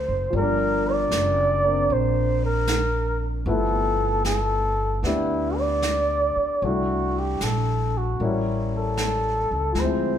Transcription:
Already playing: F#3 A3 A#3 C4 C5
0.08 F#1
0.30 G1 F3 G3, brush sweep
0.37 A#3 A#4
0.42 D4
0.92 D5
1.11 F#1, snare, hi-hat pedal
1.64 A#3 C4 D4
1.90 A#1 C5, brush sweep
2.46 A#4
2.67 snare, hi-hat pedal
3.45 G1 F3 A3 B3 E4 A4, brush sweep
4.25 A4, snare, hi-hat pedal
5.03 D2 B3 D4 E4 G4, brush sweep, snare
5.59 D5
5.82 snare, hi-hat pedal
6.36 muted upright bass stroke
6.61 C2 G3 A3 D4 E4 F#4, brush sweep
7.19 G4
7.41 A#1 A4, snare, hi-hat pedal
7.98 F#4
8.19 A1 G3 A#3 C#4 E4, brush sweep
8.77 A4
8.97 snare, hi-hat pedal
9.51 C#2
9.72 D2 F3 G#3, brush sweep, snare
9.79 C4 E4 C5

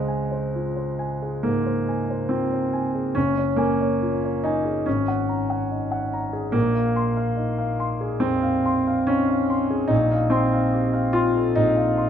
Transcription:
Already playing: C#2 G#3 C5
0.08 G#5
0.32 C5
0.55 F4
0.76 C5
0.99 G#5
1.22 G#4
1.43 G#2 A#3
1.66 C5
1.88 G#5
2.10 C5
2.29 C4 F4
2.53 C5
2.73 G#5
2.95 G#4
3.15 F#1 C#4
3.38 C#5
3.56 A#3 G#5
3.81 C#5
4.02 F4
4.25 C#5
4.44 D#4 G#5
4.65 G#4
4.86 G#1 C#4
5.08 F#5
5.29 A#5
5.50 F#5
5.71 D#4
5.91 F#5
6.13 A#5
6.33 G#4
6.52 A#1 A#3
6.75 F5
6.96 C6
7.17 F5
7.36 D#4
7.58 F5
7.80 C6
8.01 G#4
8.20 F2 C4
8.42 F5
8.66 C6
8.87 F5
9.07 C#4 D#4
9.30 F5
9.50 C6
9.70 G#4
9.88 A#1 D#4
10.12 F5
10.30 C4 C6
10.53 F5
10.73 G4
10.93 F5
11.13 F4 C6
11.35 A4
11.55 A#1 D#4
11.77 F5
11.98 C6

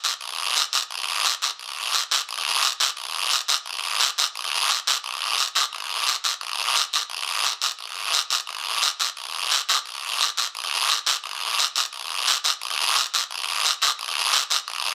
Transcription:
0.04 short guiro
0.21 long guiro
0.56 short guiro
0.73 short guiro
0.91 long guiro
1.25 short guiro
1.42 short guiro
1.59 long guiro
1.94 short guiro
2.11 short guiro
2.29 long guiro
2.63 short guiro
2.80 short guiro
2.97 long guiro
3.31 short guiro
3.48 short guiro
3.66 long guiro
4.00 short guiro
4.18 short guiro
4.35 long guiro
4.70 short guiro
4.87 short guiro
5.04 long guiro
5.38 short guiro
5.55 short guiro
5.73 long guiro
6.07 short guiro
6.24 short guiro
6.41 long guiro
6.76 short guiro
6.93 short guiro
7.10 long guiro
7.44 short guiro
7.62 short guiro
7.79 long guiro
8.13 short guiro
8.30 short guiro
8.47 long guiro
8.82 short guiro
9.00 short guiro
9.17 long guiro
9.51 short guiro
9.69 short guiro
9.86 long guiro
10.20 short guiro
10.37 short guiro
10.55 long guiro
10.89 short guiro
11.07 short guiro
11.24 long guiro
11.59 short guiro
11.76 short guiro
11.93 long guiro
12.28 short guiro
12.44 short guiro
12.61 long guiro
12.96 short guiro
13.14 short guiro
13.31 long guiro
13.65 short guiro
13.82 short guiro
13.99 long guiro
14.33 short guiro
14.50 short guiro
14.68 long guiro

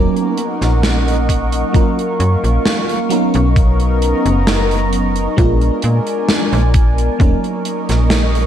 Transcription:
Already playing: F#3 A#3 C#4 D#4 A#4 D#5 F#5 C#6
0.16 closed hi-hat
0.37 closed hi-hat
0.61 A#1, snare, closed hi-hat
0.83 snare, closed hi-hat
1.08 closed hi-hat
1.29 kick, closed hi-hat
1.52 closed hi-hat
1.73 F#3 A#3 C#4 F4 A#4 F5, kick, closed hi-hat
1.99 closed hi-hat
2.20 F#2, closed hi-hat
2.44 A#1, closed hi-hat
2.65 snare, closed hi-hat
2.89 closed hi-hat
3.09 F#3 B3 C#4 D#4 A#4 D#5 A#5, closed hi-hat
3.34 B1, closed hi-hat
3.56 kick, closed hi-hat
3.80 closed hi-hat
4.02 closed hi-hat
4.26 F#1, closed hi-hat
4.47 snare, closed hi-hat
4.71 closed hi-hat
4.93 closed hi-hat
5.16 closed hi-hat
5.36 A#1 G#3 B3 D4 F4 A#4 D5 G#5, kick, closed hi-hat
5.61 closed hi-hat
5.82 A#2, closed hi-hat
6.07 closed hi-hat
6.29 snare, closed hi-hat
6.53 A#1, closed hi-hat
6.74 kick, closed hi-hat
6.98 closed hi-hat
7.19 D#1 F#3 A#3 C#4 D#4 A#4 D#5 C#6, kick, closed hi-hat
7.44 closed hi-hat
7.65 closed hi-hat
7.89 A#1, snare, closed hi-hat
8.10 snare, closed hi-hat
8.35 closed hi-hat

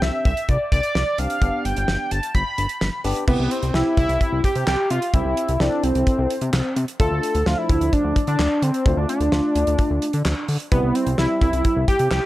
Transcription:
Already playing: C4 D4 G4
0.02 C2 E5, snare
0.25 C2 E5, kick, closed hi-hat
0.37 closed hi-hat
0.49 C2 D5, kick, closed hi-hat
0.72 C2 D5, kick, closed hi-hat
0.83 closed hi-hat
0.95 C2, snare
1.18 C2 C4 D4 G4 F5, closed hi-hat
1.30 closed hi-hat
1.41 G1 B3 D4 G4, kick, closed hi-hat
1.65 G1 G5, closed hi-hat
1.76 G1, closed hi-hat
1.88 G1, snare
2.11 G1 A5, closed hi-hat
2.23 closed hi-hat
2.35 G1 B5, kick, closed hi-hat
2.58 G1, closed hi-hat
2.69 closed hi-hat
2.81 G1, snare
3.04 G1 B3 D4 G4, open hi-hat
3.16 closed hi-hat
3.28 C2 B3 C4 E4 G4, kick, crash
3.39 C2
3.51 C4, closed hi-hat
3.63 C2, closed hi-hat
3.74 C2 C4 E4 G4, snare
3.97 C2 E4, kick, closed hi-hat
4.09 C2, closed hi-hat
4.21 kick, closed hi-hat
4.32 C2
4.44 G4, kick, closed hi-hat
4.55 C3, closed hi-hat
4.67 C2 G4, snare, clap
4.90 C3 F4, closed hi-hat
5.02 closed hi-hat
5.14 C2 C4 E4 G4, kick, closed hi-hat
5.25 C2
5.37 closed hi-hat
5.49 C2, closed hi-hat
5.60 C2 C4 D4 E4 A4, snare
5.83 C2 C4, closed hi-hat
5.95 C2, closed hi-hat
6.07 kick, closed hi-hat
6.18 C2
6.30 closed hi-hat
6.41 C3, closed hi-hat
6.53 C2, snare, clap
6.76 C3, closed hi-hat
6.88 closed hi-hat
7.00 D2 A3 D4 F4 A4, kick, closed hi-hat
7.11 D2
7.23 closed hi-hat
7.35 D2, closed hi-hat
7.46 D2 F3 A3 D4 F4, snare
7.58 E4
7.69 D2, kick, closed hi-hat
7.81 D2, closed hi-hat
7.93 D4, kick, closed hi-hat
8.04 D2
8.16 kick, closed hi-hat
8.27 D3 D4, closed hi-hat
8.39 D2, snare, clap
8.62 D3 C4, closed hi-hat
8.74 closed hi-hat
8.86 D2 A3 D4 F4, kick, closed hi-hat
8.97 D2 D4
9.09 D4, closed hi-hat
9.20 D2, closed hi-hat
9.32 D2 A3 D4 F4, snare
9.55 D2, closed hi-hat
9.67 D2, closed hi-hat
9.79 kick, closed hi-hat
9.91 D2
10.02 closed hi-hat
10.13 D3, closed hi-hat
10.25 D2, snare, clap
10.48 D3, open hi-hat
10.60 closed hi-hat
10.72 C2 G3 B3 C4 E4, kick, closed hi-hat
10.83 C2
10.95 C4, closed hi-hat
11.07 C2, closed hi-hat
11.18 C2 G3 C4 E4, snare
11.41 C2 E4, kick, closed hi-hat
11.53 C2, closed hi-hat
11.65 kick, closed hi-hat
11.77 C2
11.88 G4, kick, closed hi-hat
11.99 C3, closed hi-hat
12.11 C2 G4, snare, clap

